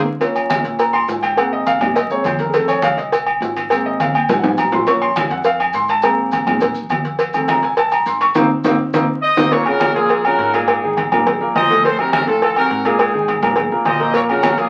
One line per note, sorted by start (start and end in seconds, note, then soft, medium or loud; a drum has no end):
0.19 1.33 F3 medium
0.19 1.33 A#3 soft
0.19 1.34 C#4 medium
0.19 cowbell loud
0.19 high conga soft
0.19 low agogo medium
0.19 maracas medium
0.35 high conga soft
0.35 low agogo medium
0.35 maracas medium
0.50 cowbell medium
0.50 high conga loud
0.50 low agogo loud
0.50 maracas medium
0.64 1.05 A#2 medium
0.64 cowbell medium
0.64 high conga soft
0.64 maracas soft
0.79 0.93 A#5 medium
0.79 cowbell loud
0.79 high conga soft
0.79 low agogo medium
0.79 maracas medium
0.93 1.08 C6 loud
0.93 high conga soft
0.93 low agogo medium
1.08 1.76 G#2 medium
1.08 1.23 G#5 medium
1.08 cowbell medium
1.08 high conga soft
1.08 low timbale medium
1.08 maracas medium
1.22 1.37 G5 medium
1.22 cowbell medium
1.22 high conga soft
1.22 low agogo medium
1.22 maracas soft
1.37 1.79 G#3 medium
1.37 1.79 A#3 medium
1.37 1.79 C4 medium
1.37 1.52 F#5 medium
1.37 cowbell loud
1.37 high conga soft
1.37 low agogo loud
1.37 maracas medium
1.53 1.67 D#5 loud
1.53 high conga soft
1.66 1.81 F5 medium
1.66 cowbell medium
1.66 high conga medium
1.66 low agogo medium
1.66 maracas medium
1.81 2.09 D#2 loud
1.81 1.95 D5 medium
1.81 high conga soft
1.81 low conga medium
1.81 low agogo loud
1.81 maracas soft
1.95 2.10 D#5 medium
1.95 cowbell loud
1.95 high conga soft
1.95 low agogo medium
1.95 maracas medium
2.10 2.24 D#2 medium
2.10 2.24 G#3 soft
2.10 2.24 A#3 soft
2.10 2.24 C4 medium
2.10 2.25 C#5 medium
2.10 high conga soft
2.10 maracas medium
2.24 2.92 F2 medium
2.24 2.39 C5 medium
2.24 cowbell medium
2.24 high conga medium
2.24 low timbale medium
2.24 low agogo medium
2.24 maracas medium
2.39 2.54 A#4 medium
2.39 cowbell medium
2.39 high conga medium
2.39 maracas soft
2.49 2.73 D#3 medium
2.49 2.52 G#4 medium
2.53 2.74 A3 medium
2.53 2.74 C4 medium
2.53 2.68 A4 medium
2.53 cowbell loud
2.53 low agogo medium
2.53 maracas medium
2.68 2.83 C#5 medium
2.68 high conga soft
2.68 low agogo loud
2.68 maracas medium
2.82 2.98 F5 loud
2.82 cowbell medium
2.82 high conga medium
2.82 low agogo loud
2.82 maracas medium
2.97 3.38 C2 loud
2.97 3.25 D#5 medium
2.97 cowbell medium
2.97 high conga soft
2.97 maracas soft
3.12 cowbell loud
3.12 high conga soft
3.12 low agogo medium
3.12 maracas medium
3.26 high conga soft
3.26 low agogo loud
3.40 4.09 G#1 loud
3.40 cowbell medium
3.40 high conga soft
3.40 low timbale medium
3.40 maracas medium
3.56 cowbell medium
3.56 high conga soft
3.56 low agogo medium
3.56 maracas soft
3.70 4.12 G#3 medium
3.70 4.12 A#3 soft
3.70 4.13 C4 medium
3.70 cowbell loud
3.70 high conga soft
3.70 low agogo loud
3.70 maracas medium
3.86 4.00 D#5 medium
3.86 high conga soft
4.00 4.15 F5 medium
4.00 cowbell medium
4.00 high conga loud
4.00 low agogo medium
4.00 maracas medium
4.14 4.41 D#2 medium
4.14 4.29 G5 medium
4.14 low agogo loud
4.14 maracas soft
4.29 4.39 G#5 loud
4.29 cowbell loud
4.29 low conga loud
4.29 low agogo medium
4.29 maracas medium
4.39 4.57 C2 medium
4.39 4.48 F#5 medium
4.43 low conga loud
4.43 high timbale loud
4.43 maracas medium
4.48 4.58 G#5 medium
4.57 5.25 A#1 loud
4.57 4.72 A#5 medium
4.57 cowbell medium
4.57 low conga medium
4.57 low agogo loud
4.57 maracas medium
4.72 4.87 C6 medium
4.72 cowbell medium
4.72 low conga medium
4.72 low timbale medium
4.72 maracas soft
4.86 5.06 F3 medium
4.86 5.07 A#3 medium
4.86 5.07 C#4 medium
4.86 5.02 C#6 loud
4.86 cowbell loud
4.86 low agogo medium
4.86 maracas medium
5.02 5.16 C6 loud
5.02 high conga soft
5.02 low agogo loud
5.16 5.31 G#5 medium
5.16 cowbell medium
5.16 high conga loud
5.16 low agogo loud
5.16 maracas medium
5.30 5.71 F2 loud
5.30 5.45 F#5 medium
5.30 cowbell medium
5.30 high conga soft
5.30 maracas soft
5.44 5.60 F5 medium
5.44 cowbell loud
5.44 high conga soft
5.44 low agogo medium
5.44 maracas medium
5.60 5.74 G#5 loud
5.60 high conga soft
5.60 low agogo loud
5.73 6.41 G#2 medium
5.73 5.89 C6 loud
5.73 cowbell medium
5.73 high conga soft
5.73 maracas medium
5.88 6.04 A5 loud
5.88 cowbell medium
5.88 high conga soft
5.88 low agogo medium
5.88 maracas soft
6.02 6.45 G#3 medium
6.02 6.45 A#3 medium
6.02 6.46 C4 medium
6.02 cowbell loud
6.02 high conga soft
6.02 low agogo loud
6.02 maracas medium
6.19 high conga soft
6.31 cowbell medium
6.31 high conga medium
6.31 low agogo medium
6.31 maracas medium
6.46 6.87 D#2 medium
6.46 6.60 G#3 soft
6.46 6.61 A#3 soft
6.46 6.61 C4 soft
6.46 high conga soft
6.46 low conga medium
6.46 low agogo loud
6.46 maracas soft
6.60 cowbell loud
6.60 high conga soft
6.60 low conga medium
6.60 low agogo medium
6.60 maracas medium
6.75 high conga soft
6.75 maracas medium
6.89 7.57 F2 medium
6.89 cowbell medium
6.89 high conga medium
6.89 low agogo medium
6.89 maracas medium
7.04 cowbell medium
7.04 maracas soft
7.19 cowbell loud
7.19 high conga soft
7.19 low agogo medium
7.19 maracas medium
7.33 7.54 D#3 medium
7.33 7.54 A3 medium
7.33 7.54 C4 medium
7.33 high conga soft
7.33 low agogo loud
7.33 maracas medium
7.48 7.63 A#5 medium
7.48 cowbell medium
7.48 high conga medium
7.48 low agogo loud
7.48 maracas medium
7.62 8.03 C2 loud
7.62 7.78 G#5 medium
7.62 cowbell medium
7.62 high conga soft
7.62 maracas soft
7.77 7.92 A5 medium
7.77 cowbell loud
7.77 high conga soft
7.77 low agogo medium
7.77 maracas medium
7.91 8.06 A#5 medium
7.91 high conga soft
7.91 low agogo loud
7.91 maracas medium
8.06 8.34 G#1 medium
8.06 8.21 C6 medium
8.06 cowbell medium
8.06 high conga soft
8.06 maracas medium
8.20 8.36 C#6 loud
8.20 cowbell medium
8.20 high conga soft
8.20 low agogo medium
8.20 maracas soft
8.35 8.46 G#1 loud
8.35 8.45 A#3 loud
8.35 8.45 C4 loud
8.35 8.45 D#4 loud
8.35 cowbell loud
8.35 high conga loud
8.35 high timbale loud
8.35 maracas medium
8.64 8.75 G#1 loud
8.64 8.74 A#3 loud
8.64 8.75 C4 loud
8.64 8.74 D#4 loud
8.64 cowbell loud
8.64 high conga loud
8.64 high timbale loud
8.64 maracas loud
8.94 9.05 G#1 medium
8.94 9.03 A#3 medium
8.94 9.03 C4 medium
8.94 9.03 D#4 loud
8.94 cowbell loud
8.94 high conga loud
8.94 high timbale medium
8.94 maracas loud
9.22 9.50 C5 medium
9.22 9.49 D#5 loud
9.37 9.48 G#1 loud
9.37 9.47 A#3 medium
9.37 9.47 C4 medium
9.37 9.47 D#4 loud
9.37 cowbell medium
9.37 high conga medium
9.37 high timbale loud
9.37 maracas loud
9.52 9.64 A#2 medium
9.52 9.64 A#3 medium
9.52 9.63 A#4 medium
9.52 9.65 A#4 medium
9.52 9.66 C#5 loud
9.52 cowbell loud
9.52 high conga soft
9.52 low agogo medium
9.65 9.91 C#3 medium
9.65 9.91 C#4 medium
9.65 9.91 F4 medium
9.65 9.95 F#4 medium
9.65 9.95 A#4 loud
9.65 high conga soft
9.65 low agogo loud
9.80 cowbell medium
9.80 high conga loud
9.80 low agogo loud
9.94 10.35 F2 loud
9.94 10.19 A#2 medium
9.94 10.20 A#3 medium
9.94 10.22 F4 medium
9.94 10.21 G#4 loud
9.94 10.20 A#4 medium
9.94 cowbell medium
9.94 high conga soft
10.09 cowbell loud
10.09 high conga soft
10.09 low agogo medium
10.24 10.48 C#3 medium
10.24 10.49 C#4 medium
10.24 10.49 F4 medium
10.24 10.54 F#4 medium
10.24 10.53 A#4 loud
10.24 high conga soft
10.24 low agogo loud
10.38 11.05 G#2 loud
10.38 cowbell medium
10.38 high conga soft
10.54 10.77 A#2 loud
10.54 10.78 A#3 loud
10.54 11.12 D#4 medium
10.54 11.11 G#4 medium
10.54 10.78 A#4 loud
10.54 cowbell medium
10.54 high conga soft
10.54 low agogo medium
10.68 cowbell loud
10.68 high conga soft
10.68 low agogo loud
10.83 11.07 D#3 medium
10.83 11.07 D#4 medium
10.83 11.07 G#4 medium
10.83 high conga soft
10.97 cowbell medium
10.97 high conga medium
10.97 low agogo medium
11.12 11.38 D#2 medium
11.12 11.24 A#2 medium
11.12 11.24 A#3 medium
11.12 11.24 A#4 medium
11.12 high conga soft
11.12 low conga medium
11.12 low agogo loud
11.26 11.38 D#3 medium
11.26 11.38 D#4 medium
11.26 11.38 G#4 medium
11.26 cowbell loud
11.26 high conga soft
11.26 low conga medium
11.26 low agogo medium
11.41 11.54 D#2 medium
11.41 11.64 A#2 medium
11.41 11.64 A#3 loud
11.41 11.65 A#4 medium
11.41 high conga soft
11.55 12.22 F2 loud
11.55 11.82 C5 medium
11.55 11.82 D#5 loud
11.55 cowbell medium
11.55 high conga medium
11.55 low timbale medium
11.55 low agogo loud
11.70 11.81 A2 loud
11.70 11.82 A3 loud
11.70 11.82 A4 loud
11.70 cowbell medium
11.70 high conga medium
11.84 11.96 A2 medium
11.84 11.96 A3 medium
11.84 11.98 A4 medium
11.84 11.97 A4 medium
11.84 11.97 C5 loud
11.84 cowbell loud
11.84 high conga soft
11.84 low agogo medium
11.99 12.22 C3 medium
11.99 12.22 C4 medium
11.99 12.22 D#4 medium
11.99 12.12 F#4 medium
11.99 12.12 A#4 loud
11.99 high conga soft
11.99 low agogo medium
12.13 12.27 F4 medium
12.13 12.26 A#4 loud
12.13 cowbell medium
12.13 high conga loud
12.13 low agogo loud
12.27 12.67 F2 loud
12.27 12.51 A2 medium
12.27 12.51 A3 medium
12.27 12.41 F4 medium
12.27 12.41 A4 loud
12.27 12.51 A4 medium
12.27 cowbell medium
12.27 high conga soft
12.42 12.55 F4 medium
12.42 12.55 A4 loud
12.42 cowbell loud
12.42 high conga soft
12.42 low agogo medium
12.56 12.80 C3 medium
12.56 12.80 C4 medium
12.56 12.80 D#4 medium
12.56 12.83 F#4 medium
12.56 12.83 A#4 loud
12.56 high conga soft
12.56 low agogo loud
12.70 13.37 G#2 loud
12.70 cowbell medium
12.70 high conga soft
12.85 13.08 A#2 loud
12.85 13.09 A#3 medium
12.85 13.43 D#4 medium
12.85 13.43 G#4 medium
12.85 13.09 A#4 medium
12.85 cowbell medium
12.85 high conga soft
12.85 low agogo medium
12.99 cowbell loud
12.99 high conga soft
12.99 low agogo loud
13.13 13.37 D#3 medium
13.13 13.37 D#4 medium
13.13 13.37 G#4 medium
13.13 high conga soft
13.28 cowbell medium
13.28 high conga medium
13.28 low agogo medium
13.42 13.69 D#2 loud
13.42 13.54 A#2 medium
13.42 13.54 A#3 medium
13.42 13.54 A#4 medium
13.42 high conga soft
13.42 low conga medium
13.42 low agogo loud
13.56 13.69 D#3 medium
13.56 13.69 D#4 medium
13.56 13.69 G#4 medium
13.56 cowbell loud
13.56 high conga soft
13.56 low conga medium
13.56 low agogo medium
13.70 13.84 C2 medium
13.70 13.95 A#2 medium
13.70 13.95 A#3 medium
13.70 13.96 A#4 medium
13.70 high conga soft
13.85 14.52 A#1 medium
13.85 14.13 C5 medium
13.85 14.12 D#5 loud
13.85 cowbell medium
13.85 high conga medium
13.85 low timbale medium
13.85 low agogo medium
14.00 14.12 A#2 loud
14.00 14.12 A#3 medium
14.00 14.12 A#4 medium
14.00 cowbell medium
14.14 14.26 A#2 medium
14.14 14.26 A#3 medium
14.14 14.21 A#4 medium
14.14 14.27 A#4 medium
14.14 14.21 C#5 loud
14.14 cowbell loud
14.14 high conga soft
14.14 low agogo medium
14.14 maracas medium
14.29 14.53 C#3 medium
14.29 14.53 C#4 medium
14.29 14.53 F4 medium
14.29 14.56 F#4 medium
14.29 14.56 A#4 loud
14.29 high conga soft
14.29 low agogo medium
14.43 cowbell medium
14.43 high conga loud
14.43 low agogo loud
14.43 maracas medium
14.57 14.69 F2 loud
14.57 14.69 A#2 medium
14.57 14.69 A#3 medium
14.57 14.69 F4 medium
14.57 14.69 G#4 loud
14.57 14.69 A#4 medium
14.57 cowbell medium
14.57 high conga soft
14.57 maracas soft